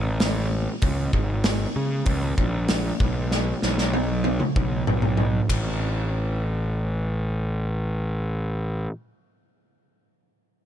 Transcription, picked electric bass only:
0, 0, Header, 1, 2, 480
1, 0, Start_track
1, 0, Tempo, 623053
1, 632, Time_signature, 4, 2, 24, 8
1, 8207, End_track
2, 0, Start_track
2, 0, Title_t, "Picked electric bass"
2, 0, Program_c, 0, 34
2, 0, Note_on_c, 0, 33, 77
2, 512, Note_off_c, 0, 33, 0
2, 637, Note_on_c, 0, 37, 95
2, 834, Note_off_c, 0, 37, 0
2, 872, Note_on_c, 0, 32, 82
2, 1270, Note_off_c, 0, 32, 0
2, 1355, Note_on_c, 0, 49, 74
2, 1553, Note_off_c, 0, 49, 0
2, 1587, Note_on_c, 0, 37, 77
2, 1788, Note_off_c, 0, 37, 0
2, 1834, Note_on_c, 0, 34, 73
2, 2231, Note_off_c, 0, 34, 0
2, 2314, Note_on_c, 0, 35, 83
2, 2711, Note_off_c, 0, 35, 0
2, 2798, Note_on_c, 0, 35, 73
2, 3393, Note_off_c, 0, 35, 0
2, 3512, Note_on_c, 0, 35, 75
2, 3711, Note_off_c, 0, 35, 0
2, 3762, Note_on_c, 0, 35, 70
2, 4156, Note_off_c, 0, 35, 0
2, 4230, Note_on_c, 0, 33, 75
2, 6828, Note_off_c, 0, 33, 0
2, 8207, End_track
0, 0, End_of_file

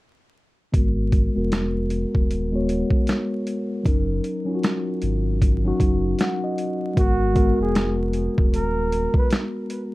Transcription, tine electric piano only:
0, 0, Header, 1, 2, 480
1, 0, Start_track
1, 0, Tempo, 779221
1, 454, Time_signature, 4, 2, 24, 8
1, 6127, End_track
2, 0, Start_track
2, 0, Title_t, "Tine electric piano"
2, 0, Program_c, 0, 4
2, 446, Note_on_c, 0, 56, 73
2, 453, Note_on_c, 0, 59, 66
2, 460, Note_on_c, 0, 66, 69
2, 466, Note_on_c, 0, 70, 83
2, 557, Control_c, 0, 64, 127
2, 699, Note_off_c, 0, 56, 0
2, 703, Note_off_c, 0, 59, 0
2, 706, Note_off_c, 0, 66, 0
2, 710, Note_off_c, 0, 70, 0
2, 829, Note_on_c, 0, 56, 75
2, 837, Note_on_c, 0, 59, 64
2, 843, Note_on_c, 0, 66, 65
2, 850, Note_on_c, 0, 70, 89
2, 1326, Note_off_c, 0, 56, 0
2, 1330, Note_off_c, 0, 59, 0
2, 1333, Note_off_c, 0, 66, 0
2, 1336, Note_off_c, 0, 70, 0
2, 1553, Note_on_c, 0, 56, 76
2, 1561, Note_on_c, 0, 59, 77
2, 1568, Note_on_c, 0, 66, 68
2, 1574, Note_on_c, 0, 73, 81
2, 2115, Note_off_c, 0, 56, 0
2, 2119, Note_off_c, 0, 59, 0
2, 2123, Note_off_c, 0, 66, 0
2, 2126, Note_off_c, 0, 73, 0
2, 2362, Note_on_c, 0, 54, 81
2, 2370, Note_on_c, 0, 61, 69
2, 2377, Note_on_c, 0, 63, 76
2, 2381, Control_c, 0, 64, 0
2, 2383, Note_on_c, 0, 70, 86
2, 2478, Control_c, 0, 64, 127
2, 2617, Note_off_c, 0, 54, 0
2, 2622, Note_off_c, 0, 61, 0
2, 2625, Note_off_c, 0, 63, 0
2, 2628, Note_off_c, 0, 70, 0
2, 2741, Note_on_c, 0, 54, 78
2, 2748, Note_on_c, 0, 61, 76
2, 2755, Note_on_c, 0, 63, 57
2, 2762, Note_on_c, 0, 65, 61
2, 2777, Note_off_c, 0, 65, 0
2, 2802, Note_on_c, 0, 66, 77
2, 3242, Note_off_c, 0, 54, 0
2, 3245, Note_off_c, 0, 61, 0
2, 3249, Note_off_c, 0, 63, 0
2, 3272, Note_off_c, 0, 66, 0
2, 3476, Note_on_c, 0, 54, 84
2, 3482, Note_on_c, 0, 61, 68
2, 3489, Note_on_c, 0, 63, 70
2, 3496, Note_on_c, 0, 66, 100
2, 3823, Note_on_c, 0, 78, 68
2, 3951, Note_off_c, 0, 78, 0
2, 3966, Note_on_c, 0, 75, 65
2, 4037, Note_off_c, 0, 54, 0
2, 4040, Note_off_c, 0, 61, 0
2, 4043, Note_off_c, 0, 63, 0
2, 4047, Note_off_c, 0, 66, 0
2, 4276, Note_off_c, 0, 75, 0
2, 4278, Note_on_c, 0, 56, 72
2, 4285, Note_on_c, 0, 59, 63
2, 4292, Note_on_c, 0, 66, 67
2, 4298, Note_on_c, 0, 70, 80
2, 4301, Control_c, 0, 64, 0
2, 4417, Control_c, 0, 64, 127
2, 4465, Note_off_c, 0, 56, 0
2, 4469, Note_off_c, 0, 59, 0
2, 4472, Note_off_c, 0, 66, 0
2, 4475, Note_off_c, 0, 70, 0
2, 4517, Note_on_c, 0, 56, 79
2, 4523, Note_on_c, 0, 59, 76
2, 4530, Note_on_c, 0, 66, 73
2, 4537, Note_on_c, 0, 70, 86
2, 5198, Note_off_c, 0, 56, 0
2, 5201, Note_off_c, 0, 59, 0
2, 5204, Note_off_c, 0, 66, 0
2, 5208, Note_off_c, 0, 70, 0
2, 6127, End_track
0, 0, End_of_file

